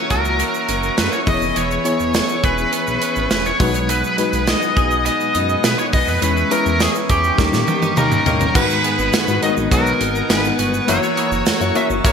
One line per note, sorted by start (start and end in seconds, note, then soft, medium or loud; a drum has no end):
0.00 1.27 E3 medium
0.00 0.38 A#3 medium
0.00 1.28 A#3 medium
0.00 0.68 C#4 medium
0.00 1.27 E4 medium
0.00 1.29 F#4 medium
0.00 1.25 A#4 medium
0.00 0.11 C#5 loud
0.00 1.29 C#5 medium
0.00 3.56 E5 medium
0.00 1.25 F#5 medium
0.00 3.56 C#6 medium
0.10 0.43 C#2 medium
0.10 1.33 F#4 medium
0.10 0.94 A#4 loud
0.10 kick medium
0.10 closed hi-hat medium
0.25 shaker soft
0.40 0.97 A#3 medium
0.40 closed hi-hat medium
0.40 shaker medium
0.54 shaker soft
0.69 0.91 F#1 medium
0.69 1.88 C#4 medium
0.69 closed hi-hat medium
0.69 shaker medium
0.83 shaker soft
0.98 1.09 F#2 loud
0.98 1.33 A#3 medium
0.98 1.13 B4 medium
0.98 snare loud
0.98 closed hi-hat medium
0.98 shaker medium
1.12 1.18 C#5 medium
1.12 shaker soft
1.26 1.38 E1 loud
1.26 2.10 E3 medium
1.26 1.55 E3 medium
1.26 1.80 B3 medium
1.26 1.80 E4 medium
1.26 1.81 G#4 medium
1.26 7.34 B4 medium
1.26 1.34 B4 medium
1.26 1.58 D#5 loud
1.26 3.58 G#5 medium
1.26 kick loud
1.26 open hi-hat medium
1.26 shaker soft
1.34 1.84 C#5 medium
1.41 1.52 F1 medium
1.41 shaker soft
1.56 1.78 E1 loud
1.56 3.60 E3 medium
1.56 2.44 C#5 loud
1.56 closed hi-hat medium
1.56 shaker medium
1.71 shaker soft
1.84 2.92 B3 medium
1.84 2.72 B3 medium
1.84 2.92 E4 medium
1.84 2.92 G#4 medium
1.84 2.93 C#5 medium
1.84 closed hi-hat medium
1.84 shaker soft
2.00 2.22 E1 loud
2.00 shaker soft
2.14 3.01 C#4 medium
2.14 snare loud
2.14 closed hi-hat medium
2.14 shaker medium
2.29 shaker medium
2.44 2.65 E1 medium
2.44 3.92 G#4 medium
2.44 3.27 B4 loud
2.44 kick medium
2.44 closed hi-hat medium
2.58 shaker soft
2.73 3.31 B3 medium
2.73 closed hi-hat medium
2.73 shaker medium
2.87 2.98 B1 medium
2.87 shaker medium
3.02 3.66 C#4 medium
3.02 closed hi-hat medium
3.02 shaker soft
3.16 3.27 G#1 medium
3.16 shaker soft
3.31 3.53 E1 medium
3.31 4.18 B3 medium
3.31 3.46 B4 medium
3.31 snare loud
3.31 closed hi-hat medium
3.31 shaker medium
3.45 3.60 C#5 medium
3.45 shaker soft
3.59 4.04 B1 medium
3.59 4.43 B2 medium
3.59 3.88 F#3 medium
3.59 4.13 G#3 medium
3.59 4.13 D#4 medium
3.59 4.14 F#4 medium
3.59 4.14 B4 medium
3.59 3.90 C#5 medium
3.59 6.20 F#5 medium
3.59 7.35 G#5 medium
3.59 6.20 D#6 medium
3.59 kick loud
3.59 open hi-hat medium
3.59 shaker soft
3.74 closed hi-hat soft
3.74 shaker soft
3.89 6.22 F#3 medium
3.89 4.50 B4 medium
3.89 closed hi-hat medium
3.89 shaker medium
4.04 shaker soft
4.17 5.25 G#3 medium
4.17 5.05 B3 medium
4.17 5.25 D#4 medium
4.17 5.25 F#4 medium
4.17 5.26 B4 medium
4.17 closed hi-hat medium
4.17 shaker soft
4.33 4.55 B1 loud
4.33 closed hi-hat medium
4.33 shaker soft
4.47 5.34 D#4 medium
4.47 5.02 D#5 loud
4.47 snare loud
4.47 closed hi-hat medium
4.47 shaker medium
4.62 shaker medium
4.76 5.09 B1 medium
4.76 6.28 G#4 medium
4.76 kick medium
4.76 closed hi-hat medium
4.91 shaker soft
5.05 5.63 B3 medium
5.05 5.66 D#5 loud
5.05 closed hi-hat medium
5.05 shaker medium
5.20 shaker soft
5.35 5.57 F#2 medium
5.35 5.92 D#4 medium
5.35 closed hi-hat medium
5.35 shaker soft
5.49 shaker soft
5.64 5.75 B2 loud
5.64 6.28 B3 medium
5.64 5.79 B4 medium
5.64 snare loud
5.64 closed hi-hat loud
5.64 shaker medium
5.79 5.84 C#5 medium
5.79 shaker medium
5.93 6.04 B1 medium
5.93 6.28 D#4 medium
5.93 6.07 D#5 medium
5.93 kick medium
5.93 open hi-hat medium
5.93 shaker soft
6.08 6.19 F2 medium
6.08 6.22 B4 medium
6.08 shaker soft
6.21 6.44 E2 loud
6.21 7.44 E3 medium
6.21 7.06 E3 medium
6.21 6.49 G#3 medium
6.21 6.49 C#4 medium
6.21 6.49 E4 medium
6.21 6.49 B4 medium
6.21 6.50 B4 medium
6.21 7.37 E5 medium
6.21 8.53 C#6 medium
6.21 closed hi-hat medium
6.21 shaker medium
6.37 shaker soft
6.51 7.38 G#3 medium
6.51 7.38 B3 medium
6.51 7.37 C#4 medium
6.51 7.39 E4 medium
6.51 6.82 A#4 medium
6.51 7.39 B4 medium
6.51 closed hi-hat medium
6.51 shaker soft
6.66 6.88 E2 medium
6.66 shaker soft
6.80 7.44 C#4 medium
6.80 6.89 G#4 medium
6.80 snare loud
6.80 closed hi-hat medium
6.80 tambourine medium
6.80 shaker medium
6.95 shaker medium
7.09 7.31 E2 medium
7.09 8.22 G4 medium
7.09 7.44 G#4 medium
7.09 kick medium
7.09 closed hi-hat medium
7.09 shaker soft
7.24 shaker soft
7.38 7.49 D#2 loud
7.38 8.22 D#3 medium
7.38 8.45 G3 medium
7.38 7.96 A#3 medium
7.38 8.46 C#4 medium
7.38 8.46 D#4 medium
7.38 8.54 A#4 medium
7.38 8.46 A#4 medium
7.38 8.54 D#5 medium
7.38 8.54 G5 medium
7.38 kick loud
7.38 snare medium
7.38 shaker medium
7.53 7.64 A#2 medium
7.53 snare medium
7.53 shaker medium
7.68 7.82 B3 medium
7.68 high tom medium
7.68 shaker soft
7.82 7.93 G2 medium
7.82 8.25 C#4 medium
7.82 high tom medium
7.82 shaker soft
7.97 8.19 D#2 loud
7.97 8.09 G3 medium
7.97 8.09 A#3 medium
7.97 8.61 A#3 medium
7.97 8.09 D#4 medium
7.97 8.09 A#4 medium
7.97 8.55 A#4 medium
7.97 mid tom medium
7.97 shaker medium
8.12 mid tom medium
8.12 shaker soft
8.26 8.48 A1 medium
8.26 8.44 G3 loud
8.26 8.44 A#3 loud
8.26 8.61 C#4 medium
8.26 8.44 D#4 medium
8.26 8.44 A#4 loud
8.26 floor tom loud
8.26 shaker soft
8.41 floor tom medium
8.41 shaker soft
8.54 8.66 G#1 loud
8.54 9.38 G#2 medium
8.54 10.88 D#3 medium
8.54 9.22 G#3 medium
8.54 8.67 G#3 loud
8.54 10.86 B3 medium
8.54 8.67 B3 loud
8.54 9.22 D#4 medium
8.54 8.67 F#4 loud
8.54 9.22 F#4 medium
8.54 8.67 B4 loud
8.54 9.22 B4 medium
8.54 9.39 B4 medium
8.54 12.12 F#5 medium
8.54 10.86 G#5 medium
8.54 10.86 D#6 medium
8.54 kick loud
8.54 crash loud
8.54 shaker medium
8.70 shaker soft
8.84 8.96 D#3 medium
8.84 8.96 G#3 medium
8.84 9.70 B3 medium
8.84 8.96 B3 medium
8.84 8.96 G#4 medium
8.84 closed hi-hat medium
8.99 9.10 G#1 loud
8.99 shaker soft
9.13 9.19 G#2 soft
9.13 10.59 F#4 medium
9.13 snare loud
9.13 closed hi-hat medium
9.13 tambourine medium
9.13 shaker medium
9.27 9.39 G#2 loud
9.27 9.40 G#3 medium
9.27 9.41 D#4 medium
9.27 9.41 F#4 medium
9.27 9.42 B4 medium
9.27 shaker medium
9.42 9.54 D#3 medium
9.42 9.54 F#3 medium
9.42 10.49 G#3 medium
9.42 9.54 B3 medium
9.42 10.49 D#4 medium
9.42 9.99 D#4 medium
9.42 10.50 F#4 medium
9.42 9.54 F#4 medium
9.42 9.49 A#4 medium
9.42 9.51 D#5 medium
9.42 closed hi-hat medium
9.49 10.53 B3 medium
9.57 9.68 G#1 medium
9.57 shaker soft
9.71 9.93 B1 loud
9.71 9.95 D#3 loud
9.71 9.95 F#3 loud
9.71 10.29 B3 medium
9.71 9.95 B3 loud
9.71 9.95 F#4 loud
9.71 10.30 A#4 medium
9.71 kick medium
9.71 closed hi-hat medium
9.71 shaker medium
9.86 shaker medium
10.01 10.22 G#1 loud
10.01 10.94 D#4 medium
10.01 closed hi-hat medium
10.15 shaker soft
10.30 10.52 G#1 medium
10.30 10.53 D#3 loud
10.30 10.53 G#3 loud
10.30 10.53 B3 loud
10.30 10.94 B3 medium
10.30 10.53 G#4 loud
10.30 10.90 B4 medium
10.30 snare loud
10.30 closed hi-hat medium
10.30 tambourine medium
10.30 shaker medium
10.45 shaker medium
10.59 10.81 G1 medium
10.59 11.46 F#4 medium
10.59 closed hi-hat medium
10.59 shaker soft
10.74 shaker soft
10.87 10.99 F#1 loud
10.87 12.12 E3 medium
10.87 11.00 F#3 loud
10.87 11.55 A#3 medium
10.87 11.00 A#3 loud
10.87 11.55 E4 medium
10.87 11.00 E4 loud
10.87 11.55 F#4 medium
10.87 11.00 A#4 loud
10.87 12.12 C#5 medium
10.87 11.55 C#5 medium
10.87 11.76 C#5 loud
10.87 12.12 A#5 medium
10.87 12.12 E6 medium
10.87 closed hi-hat medium
10.87 shaker medium
11.03 shaker soft
11.17 11.29 G#3 medium
11.17 12.04 A#3 medium
11.17 11.29 E4 medium
11.17 11.29 G#4 medium
11.17 closed hi-hat medium
11.32 11.43 F#1 loud
11.32 shaker soft
11.46 11.52 F#2 medium
11.46 12.12 F#4 medium
11.46 snare loud
11.46 closed hi-hat medium
11.46 tambourine medium
11.46 shaker medium
11.60 11.72 F#2 medium
11.60 11.74 A#3 medium
11.60 11.74 E4 medium
11.60 11.74 F#4 medium
11.60 11.75 C#5 medium
11.60 shaker medium
11.75 11.87 C#3 medium
11.75 11.87 F#3 medium
11.75 12.12 A#3 medium
11.75 11.87 A#3 medium
11.75 12.12 C#4 medium
11.75 12.12 E4 medium
11.75 11.87 F#4 medium
11.75 12.12 F#4 medium
11.75 12.12 C#5 medium
11.75 11.84 E5 loud
11.75 closed hi-hat medium
11.90 12.01 F#1 medium
11.90 shaker soft
12.04 12.12 A#1 loud
12.04 12.12 F#3 loud
12.04 12.12 A#3 loud
12.04 12.12 A#3 medium
12.04 12.12 E4 loud
12.04 12.12 A#4 loud
12.04 12.12 C#5 loud
12.04 kick loud
12.04 closed hi-hat medium
12.04 shaker medium